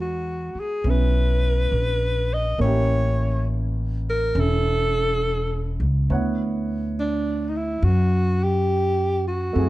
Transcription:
0.00 0.51 E2 medium
0.00 2.60 G#3 soft
0.00 0.82 B3 soft
0.00 2.60 D#4 soft
0.00 2.61 F#4 soft
0.00 0.61 F#4 medium
0.55 muted upright bass stroke soft
0.60 0.91 G#4 medium
0.84 1.68 B1 medium
0.84 2.60 B3 soft
0.84 2.59 C#4 soft
0.84 2.60 E4 soft
0.90 2.35 B4 medium
1.72 2.56 A#1 medium
2.33 2.61 D#5 medium
2.58 4.31 A1 medium
2.58 6.09 A#3 soft
2.58 4.34 C#4 soft
2.58 4.37 E4 soft
2.58 3.44 C#5 medium
2.64 6.11 G4 medium
4.10 4.42 A#4 medium
4.35 5.77 E1 medium
4.35 6.09 C#4 soft
4.35 6.09 E4 soft
4.40 5.83 A4 loud
5.80 6.07 C#2 medium
6.10 7.79 D2 medium
6.10 9.57 B3 soft
6.10 9.54 E4 soft
6.10 9.57 C#5 soft
6.10 9.57 F#5 medium
7.00 7.50 D4 medium
7.49 7.58 D#4 medium
7.57 7.86 E4 medium
7.82 9.52 F#2 medium
7.82 8.45 F#4 medium
8.43 9.27 G4 loud
9.28 9.69 F#4 medium
9.53 9.69 F#2 medium
9.53 9.69 A3 medium
9.53 9.69 C4 soft
9.53 9.69 E4 soft
9.58 9.69 G#4 medium

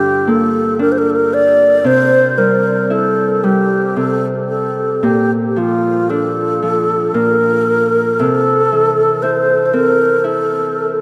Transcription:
0.00 1.89 G2 medium
0.00 1.89 D3 soft
0.00 0.33 A3 soft
0.00 0.74 C4 soft
0.00 0.79 D4 soft
0.00 0.31 G4 medium
0.27 3.49 A#3 soft
0.27 0.80 A4 medium
0.79 3.59 D4 soft
0.79 0.93 A#4 medium
0.92 1.00 C5 medium
0.98 1.11 A#4 medium
1.10 1.17 A4 medium
1.15 1.35 A#4 medium
1.34 1.88 D5 medium
1.84 3.95 C3 medium
1.84 2.40 C5 medium
2.38 3.43 G3 soft
2.38 2.93 A#4 medium
2.90 5.51 E4 soft
2.90 3.45 A4 medium
3.44 5.09 G3 soft
3.44 3.98 G4 medium
3.96 5.09 C3 soft
3.96 4.26 A4 medium
4.49 5.05 A4 medium
5.03 7.13 A#2 soft
5.03 5.31 G4 medium
5.49 5.60 G4 medium
5.56 6.61 F3 soft
5.56 6.11 F4 medium
6.10 8.90 D4 soft
6.10 7.16 A4 medium
6.62 8.24 F3 soft
7.14 8.24 A#2 soft
7.14 8.21 A#4 medium
8.20 11.02 C3 medium
8.20 9.24 A4 medium
8.72 11.02 E3 soft
9.22 10.24 E4 soft
9.22 9.66 C5 medium
9.66 9.75 C5 medium
9.73 11.02 C4 soft
9.73 10.27 A#4 medium
10.24 11.02 E4 soft
10.24 11.00 A4 medium

